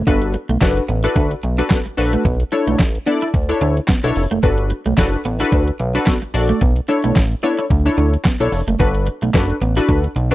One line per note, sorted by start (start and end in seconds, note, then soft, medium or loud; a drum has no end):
0.07 0.36 G1 loud
0.07 0.18 B3 medium
0.07 0.35 D4 medium
0.07 0.35 F#4 medium
0.07 0.35 A4 medium
0.07 0.35 B4 medium
0.07 kick loud
0.07 closed hi-hat medium
0.22 closed hi-hat medium
0.34 muted clean electric guitar stroke soft
0.34 closed hi-hat medium
0.49 0.58 B1 medium
0.49 0.58 A3 medium
0.49 closed hi-hat soft
0.61 0.80 F#1 medium
0.61 0.83 D4 medium
0.61 0.83 F#4 medium
0.61 0.83 A4 medium
0.61 0.83 B4 medium
0.61 muted clean electric guitar stroke soft
0.61 kick loud
0.61 snare loud
0.61 clap medium
0.61 closed hi-hat medium
0.77 closed hi-hat soft
0.88 1.08 A1 loud
0.88 1.00 B3 medium
0.88 closed hi-hat medium
1.04 1.32 D4 medium
1.04 1.13 E4 medium
1.04 1.32 F#4 medium
1.04 1.32 A4 medium
1.04 1.32 B4 loud
1.04 closed hi-hat soft
1.16 1.35 D2 medium
1.16 1.27 D4 medium
1.16 kick loud
1.16 closed hi-hat medium
1.31 closed hi-hat medium
1.43 1.62 B1 medium
1.43 muted clean electric guitar stroke soft
1.43 closed hi-hat medium
1.58 1.78 D4 medium
1.58 1.67 D4 medium
1.58 1.79 F#4 medium
1.58 1.79 A4 medium
1.58 1.79 B4 loud
1.58 closed hi-hat medium
1.70 1.82 B3 medium
1.70 kick loud
1.70 snare loud
1.70 clap medium
1.70 closed hi-hat medium
1.86 muted clean electric guitar stroke soft
1.86 closed hi-hat soft
1.97 2.17 A#1 medium
1.97 2.25 D4 medium
1.97 2.25 F#4 medium
1.97 2.25 A4 medium
1.97 2.25 B4 loud
1.97 open hi-hat medium
2.13 2.22 A3 medium
2.13 closed hi-hat medium
2.25 2.44 B1 loud
2.25 2.36 B3 medium
2.25 kick loud
2.25 closed hi-hat medium
2.40 closed hi-hat medium
2.52 2.80 D4 medium
2.52 2.80 E4 medium
2.52 2.80 A4 medium
2.52 2.80 C#5 medium
2.52 muted clean electric guitar stroke soft
2.52 closed hi-hat medium
2.67 2.76 B1 medium
2.67 2.76 A3 medium
2.67 closed hi-hat medium
2.79 2.98 A1 medium
2.79 muted clean electric guitar stroke soft
2.79 kick loud
2.79 snare loud
2.79 clap medium
2.79 closed hi-hat medium
2.95 closed hi-hat soft
3.06 3.18 B3 medium
3.06 3.28 D4 medium
3.06 3.28 E4 medium
3.06 3.28 A4 medium
3.06 3.29 D5 loud
3.06 closed hi-hat medium
3.22 3.31 E4 medium
3.22 closed hi-hat soft
3.34 3.53 D2 medium
3.34 kick loud
3.34 closed hi-hat medium
3.49 3.77 D4 medium
3.49 3.77 E4 medium
3.49 3.77 A4 medium
3.49 3.77 C#5 medium
3.49 closed hi-hat medium
3.61 3.80 D2 medium
3.61 3.73 D4 medium
3.61 closed hi-hat medium
3.77 closed hi-hat medium
3.88 4.00 B3 medium
3.88 kick loud
3.88 snare loud
3.88 clap medium
3.88 closed hi-hat medium
4.03 4.12 B1 medium
4.03 4.24 D4 medium
4.03 4.24 E4 medium
4.03 4.24 A4 medium
4.03 4.24 C#5 loud
4.03 muted clean electric guitar stroke soft
4.03 closed hi-hat soft
4.16 4.27 F1 medium
4.16 open hi-hat medium
4.31 4.40 F#1 medium
4.31 4.40 A3 medium
4.31 closed hi-hat medium
4.43 4.73 G1 loud
4.43 4.55 B3 medium
4.43 4.71 D4 medium
4.43 4.71 F#4 medium
4.43 4.71 A4 medium
4.43 4.71 B4 medium
4.43 kick loud
4.43 closed hi-hat medium
4.58 closed hi-hat medium
4.70 muted clean electric guitar stroke soft
4.70 closed hi-hat medium
4.86 4.94 B1 medium
4.86 4.95 A3 medium
4.86 closed hi-hat medium
4.97 5.17 F#1 medium
4.97 5.19 D4 medium
4.97 5.19 F#4 medium
4.97 5.19 A4 medium
4.97 5.20 B4 medium
4.97 muted clean electric guitar stroke soft
4.97 kick loud
4.97 snare loud
4.97 clap medium
4.97 closed hi-hat medium
5.13 closed hi-hat soft
5.25 5.44 A1 loud
5.25 5.36 B3 medium
5.25 closed hi-hat medium
5.40 5.68 D4 loud
5.40 5.49 E4 medium
5.40 5.68 F#4 medium
5.40 5.68 A4 medium
5.40 5.68 B4 loud
5.40 closed hi-hat medium
5.52 5.71 D2 medium
5.52 5.64 D4 medium
5.52 kick loud
5.52 closed hi-hat medium
5.67 closed hi-hat medium
5.79 5.99 B1 loud
5.79 muted clean electric guitar stroke soft
5.79 closed hi-hat medium
5.95 6.15 D4 medium
5.95 6.04 D4 medium
5.95 6.15 F#4 medium
5.95 6.15 A4 medium
5.95 6.15 B4 loud
5.95 closed hi-hat medium
6.06 6.18 B3 medium
6.06 kick loud
6.06 snare loud
6.06 clap medium
6.06 closed hi-hat medium
6.22 muted clean electric guitar stroke soft
6.22 closed hi-hat soft
6.34 6.53 A#1 medium
6.34 6.61 D4 medium
6.34 6.61 F#4 medium
6.34 6.62 A4 medium
6.34 6.62 D5 loud
6.34 open hi-hat medium
6.49 6.58 A3 medium
6.49 closed hi-hat medium
6.61 6.80 B1 loud
6.61 6.73 B3 medium
6.61 kick loud
6.61 closed hi-hat medium
6.76 closed hi-hat medium
6.88 7.16 D4 medium
6.88 7.16 E4 medium
6.88 7.17 A4 medium
6.88 7.17 C#5 medium
6.88 muted clean electric guitar stroke soft
6.88 closed hi-hat medium
7.04 7.12 B1 medium
7.04 7.13 A3 medium
7.04 closed hi-hat soft
7.16 7.35 A1 medium
7.16 muted clean electric guitar stroke soft
7.16 kick loud
7.16 snare loud
7.16 clap medium
7.16 closed hi-hat medium
7.31 closed hi-hat soft
7.43 7.55 B3 medium
7.43 7.65 D4 medium
7.43 7.65 E4 medium
7.43 7.65 A4 medium
7.43 7.65 C#5 loud
7.43 closed hi-hat medium
7.59 7.67 E4 medium
7.59 closed hi-hat medium
7.70 7.89 D2 loud
7.70 kick loud
7.70 closed hi-hat medium
7.85 8.13 D4 medium
7.85 8.14 E4 medium
7.85 8.14 A4 medium
7.85 8.14 C#5 medium
7.85 closed hi-hat medium
7.98 8.17 D2 loud
7.98 8.09 D4 medium
7.98 closed hi-hat medium
8.14 closed hi-hat medium
8.25 8.36 B3 medium
8.25 kick loud
8.25 snare loud
8.25 clap medium
8.25 closed hi-hat medium
8.40 8.49 B1 medium
8.40 8.60 D4 medium
8.40 8.60 E4 medium
8.40 8.61 A4 medium
8.40 8.61 C#5 loud
8.40 muted clean electric guitar stroke soft
8.40 closed hi-hat soft
8.52 8.63 F1 medium
8.52 open hi-hat medium
8.68 8.76 F#1 medium
8.68 8.77 A3 medium
8.68 closed hi-hat medium
8.79 9.09 G1 loud
8.79 8.91 B3 medium
8.79 9.07 D4 medium
8.79 9.07 F#4 medium
8.79 9.08 A4 medium
8.79 9.08 B4 loud
8.79 kick loud
8.79 closed hi-hat medium
8.94 closed hi-hat medium
9.07 muted clean electric guitar stroke soft
9.07 closed hi-hat medium
9.22 9.30 B1 medium
9.22 9.31 A3 medium
9.22 closed hi-hat soft
9.34 9.53 F#1 medium
9.34 9.56 D4 medium
9.34 9.56 F#4 medium
9.34 9.56 A4 medium
9.34 9.56 B4 loud
9.34 muted clean electric guitar stroke soft
9.34 kick loud
9.34 snare loud
9.34 clap medium
9.34 closed hi-hat medium
9.50 closed hi-hat soft
9.61 9.80 A1 loud
9.61 9.73 B3 medium
9.61 closed hi-hat medium
9.76 10.04 D4 medium
9.76 9.86 E4 medium
9.76 10.04 F#4 medium
9.76 10.05 A4 medium
9.76 10.05 B4 loud
9.76 closed hi-hat medium
9.88 10.08 D2 medium
9.88 10.00 D4 medium
9.88 kick loud
9.88 closed hi-hat medium
10.04 closed hi-hat medium
10.16 10.35 B1 loud
10.16 muted clean electric guitar stroke soft
10.16 closed hi-hat medium
10.31 10.35 D4 loud
10.31 10.35 D4 medium
10.31 10.35 F#4 medium
10.31 10.35 A4 medium